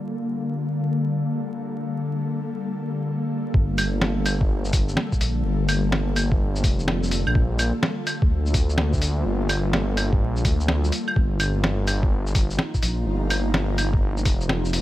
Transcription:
0.00 11.16 D3 medium
0.00 11.16 G3 medium
0.00 11.16 A#3 medium
0.00 3.54 F4 medium
0.00 11.16 A4 medium
3.54 4.96 G1 loud
3.54 kick loud
3.78 open hi-hat medium
3.78 claves medium
3.78 shaker medium
4.01 snare loud
4.26 open hi-hat medium
4.26 claves medium
4.26 shaker medium
4.41 kick loud
4.65 14.81 F4 medium
4.65 shaker soft
4.73 kick loud
4.73 open hi-hat medium
4.73 shaker medium
4.88 shaker soft
4.97 snare loud
5.12 kick medium
5.12 shaker soft
5.21 5.43 A#1 medium
5.21 open hi-hat medium
5.21 shaker medium
5.44 6.65 G1 loud
5.69 open hi-hat medium
5.69 claves medium
5.69 shaker medium
5.92 snare loud
6.16 open hi-hat medium
6.16 claves medium
6.16 shaker medium
6.32 kick loud
6.56 shaker soft
6.64 7.25 F1 medium
6.64 kick loud
6.64 open hi-hat medium
6.64 shaker medium
6.79 shaker soft
6.88 snare loud
7.03 shaker soft
7.11 open hi-hat medium
7.11 shaker medium
7.27 7.72 A#1 medium
7.27 claves medium
7.35 kick loud
7.59 open hi-hat medium
7.59 claves medium
7.59 shaker medium
7.83 snare loud
8.07 open hi-hat medium
8.07 claves soft
8.07 shaker medium
8.22 9.25 D2 medium
8.22 kick loud
8.46 shaker soft
8.54 kick loud
8.54 open hi-hat medium
8.54 shaker medium
8.70 shaker soft
8.78 snare loud
8.93 kick medium
8.93 shaker soft
9.02 open hi-hat medium
9.02 shaker medium
9.26 10.22 G1 loud
9.49 open hi-hat medium
9.49 claves medium
9.49 shaker medium
9.73 snare loud
9.97 open hi-hat medium
9.97 claves soft
9.97 shaker medium
10.13 kick loud
10.21 10.43 A#1 medium
10.36 shaker soft
10.45 10.91 D2 medium
10.45 kick loud
10.45 open hi-hat medium
10.45 shaker medium
10.60 shaker soft
10.68 snare loud
10.84 shaker soft
10.92 open hi-hat medium
10.92 shaker medium
11.08 claves medium
11.16 12.58 G1 loud
11.16 14.81 D#4 medium
11.16 kick loud
11.40 14.81 F3 medium
11.40 open hi-hat medium
11.40 claves medium
11.40 shaker medium
11.64 snare loud
11.86 14.81 A#3 medium
11.86 open hi-hat medium
11.86 claves medium
11.86 shaker medium
12.03 kick loud
12.11 14.81 A#5 medium
12.27 shaker soft
12.35 kick loud
12.35 open hi-hat medium
12.35 shaker medium
12.50 shaker soft
12.59 snare loud
12.74 kick medium
12.74 shaker soft
12.83 13.05 A#1 medium
12.83 open hi-hat medium
12.83 shaker medium
13.06 14.27 G1 loud
13.30 open hi-hat medium
13.30 claves medium
13.30 shaker medium
13.54 snare loud
13.78 open hi-hat medium
13.78 claves soft
13.78 shaker medium
13.94 kick loud
14.17 shaker soft
14.25 14.81 F1 medium
14.25 kick loud
14.25 open hi-hat medium
14.25 shaker medium
14.41 shaker soft
14.49 snare loud
14.65 shaker soft
14.73 open hi-hat medium
14.73 shaker medium

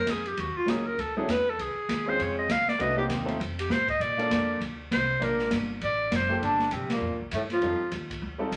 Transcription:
0.00 0.12 A#4 medium
0.07 0.36 F2 medium
0.07 0.28 G#4 medium
0.07 kick soft
0.07 snare medium
0.07 hi-hat pedal medium
0.07 ride medium
0.26 0.41 G4 medium
0.26 ride soft
0.37 0.55 D#2 medium
0.37 0.59 F#4 medium
0.37 kick soft
0.37 ride medium
0.55 0.71 F4 medium
0.55 muted upright bass stroke soft
0.66 0.97 C#2 medium
0.66 0.83 F#3 medium
0.66 0.83 A#3 medium
0.66 0.84 C#4 medium
0.66 0.84 D#4 medium
0.66 0.88 G#4 medium
0.66 0.84 A#4 medium
0.66 kick soft
0.66 snare medium
0.66 hi-hat pedal medium
0.66 ride medium
0.86 1.02 A#4 medium
0.98 1.27 D2 medium
0.98 1.17 A4 medium
0.98 kick soft
0.98 ride medium
1.17 1.27 F#3 medium
1.17 1.27 C4 medium
1.17 1.27 D4 medium
1.17 1.27 E4 medium
1.17 1.32 G#4 medium
1.17 1.28 A4 medium
1.28 1.57 E2 loud
1.28 1.51 B4 loud
1.28 kick soft
1.28 snare medium
1.28 hi-hat pedal medium
1.28 ride medium
1.49 1.62 A4 medium
1.59 1.74 C#2 medium
1.59 2.11 G#4 medium
1.59 kick soft
1.59 ride medium
1.74 muted upright bass stroke soft
1.89 2.18 D#2 medium
1.89 kick soft
1.89 snare medium
1.89 hi-hat pedal medium
1.89 ride medium
2.06 2.46 G#3 medium
2.06 2.47 C4 medium
2.06 2.47 C#4 medium
2.06 2.47 F4 medium
2.06 2.47 C5 medium
2.06 2.23 C5 medium
2.19 2.48 F2 medium
2.19 2.38 C#5 medium
2.19 kick soft
2.19 ride medium
2.38 2.53 D#5 loud
2.49 2.65 C#2 loud
2.49 2.70 F5 loud
2.49 kick soft
2.49 snare medium
2.49 hi-hat pedal medium
2.49 ride medium
2.66 2.83 D5 loud
2.66 muted upright bass stroke soft
2.66 snare medium
2.79 3.08 C2 medium
2.79 2.95 A3 medium
2.79 2.95 B3 medium
2.79 2.96 D4 medium
2.79 2.96 F#4 medium
2.79 2.96 B4 medium
2.79 2.97 D#5 loud
2.79 kick soft
2.79 ride medium
2.96 3.23 A#3 medium
2.96 3.24 C4 medium
2.96 3.24 D#4 medium
2.96 3.24 G4 medium
2.96 3.05 G4 loud
2.96 3.24 C5 medium
3.09 3.39 D#2 loud
3.09 kick soft
3.09 snare medium
3.09 hi-hat pedal medium
3.09 ride medium
3.25 3.37 A3 medium
3.25 3.37 C4 medium
3.25 3.37 D#4 medium
3.25 3.38 F4 medium
3.25 3.38 C5 medium
3.25 ride medium
3.40 3.69 F2 loud
3.40 kick soft
3.40 ride medium
3.59 3.73 G4 medium
3.59 ride medium
3.69 3.99 A2 loud
3.69 3.89 C5 medium
3.69 kick soft
3.69 snare loud
3.69 hi-hat pedal medium
3.88 4.03 D#5 loud
3.88 kick medium
3.88 ride medium
3.99 4.29 A#2 medium
3.99 4.61 D5 loud
3.99 kick soft
3.99 ride medium
4.17 4.57 A#3 medium
4.17 4.57 D4 medium
4.17 4.58 F4 medium
4.17 4.58 A4 medium
4.17 4.58 D5 medium
4.17 ride medium
4.31 4.59 F2 loud
4.31 kick soft
4.31 snare medium
4.31 hi-hat pedal medium
4.31 ride medium
4.60 4.89 D2 loud
4.60 kick soft
4.60 ride medium
4.91 5.20 C2 loud
4.91 5.25 C5 medium
4.91 kick soft
4.91 snare medium
4.91 hi-hat pedal medium
4.91 ride medium
5.20 5.50 A#1 medium
5.20 5.65 A#3 medium
5.20 5.65 D4 medium
5.20 5.65 F4 medium
5.20 5.66 A#4 medium
5.20 5.52 A#4 medium
5.20 5.65 D5 medium
5.20 kick soft
5.20 ride medium
5.39 snare medium
5.51 5.80 G1 loud
5.51 kick soft
5.51 snare medium
5.51 hi-hat pedal medium
5.51 ride medium
5.81 6.10 A1 medium
5.81 6.17 D5 loud
5.81 kick soft
5.81 ride medium
6.12 6.40 F#1 loud
6.12 kick soft
6.12 snare loud
6.12 hi-hat pedal medium
6.12 ride loud
6.16 6.37 C5 medium
6.28 6.39 A#3 medium
6.28 6.40 F4 medium
6.28 6.40 G4 medium
6.28 6.40 A4 medium
6.28 6.41 C5 medium
6.42 6.71 G1 medium
6.42 6.74 D3 medium
6.42 6.74 D4 loud
6.42 kick soft
6.42 ride medium
6.59 snare medium
6.71 7.00 A#1 loud
6.71 6.90 C3 medium
6.71 6.90 C4 medium
6.71 kick soft
6.71 hi-hat pedal medium
6.71 ride medium
6.90 7.18 A#3 medium
6.90 snare medium
6.90 ride medium
6.94 7.20 A#2 medium
7.01 7.10 F2 medium
7.10 7.20 D2 medium
7.21 7.30 A#1 medium
7.31 7.61 G2 medium
7.31 7.43 A2 medium
7.31 7.41 A3 medium
7.31 kick soft
7.31 hi-hat pedal medium
7.31 ride medium
7.50 7.91 F3 medium
7.50 7.91 F4 loud
7.50 snare soft
7.50 ride soft
7.61 7.78 F2 medium
7.61 7.78 G3 medium
7.61 7.79 C4 medium
7.61 7.79 D#4 medium
7.61 7.79 F4 medium
7.61 7.79 A4 medium
7.61 kick soft
7.61 ride medium
7.80 muted upright bass stroke soft
7.92 8.21 D#2 loud
7.92 kick soft
7.92 hi-hat pedal medium
7.92 ride medium
8.10 kick medium
8.10 ride medium
8.22 8.51 D2 medium
8.38 8.50 G3 medium
8.38 8.50 C4 medium
8.38 8.50 D#4 medium
8.38 8.51 F4 medium
8.38 8.51 A4 medium
8.51 8.56 C2 medium
8.51 kick soft
8.51 hi-hat pedal medium
8.51 ride medium

